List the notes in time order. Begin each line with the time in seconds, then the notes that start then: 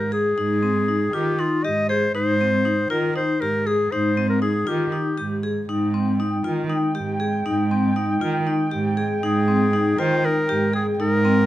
Already playing: G#2
0.12 G#4
0.38 G#2 D#4
0.63 C4
0.88 D#4
1.13 D#3 F4 G4
1.39 D#4 F4
1.64 G#2 G4 D#5
1.89 G#4 C5
2.15 G#2 D#4 C5
2.41 C4
2.65 D#4
2.90 D#3 F4 A#4
3.16 D#4 C5
3.41 G#2 G4 A#4
3.67 G#4
3.91 G#2 D#4 C5
4.17 C4
4.30 A#4
4.42 D#4 G#4
4.67 D#3 F4 G4
4.92 D#4
5.17 G#2 G4
5.43 G#4
5.68 G#2 G#3 C4 D#4 G5
5.94 C4
6.20 D#4
6.44 D#3 F4
6.70 D#4
6.95 G#2 G4
7.20 G#4
7.46 G#2 D#4
7.71 C4
7.96 D#4
8.21 D#3 F4
8.47 D#4
8.71 G#2 G4
8.97 G#4
9.23 G#2 D#4 G#4
9.48 C4
9.73 D#4
9.99 D#3 F4 C5
10.25 D#4 A#4
10.49 G#2 G4
10.73 G#4
10.99 G#2 D#4 A#4
11.25 C4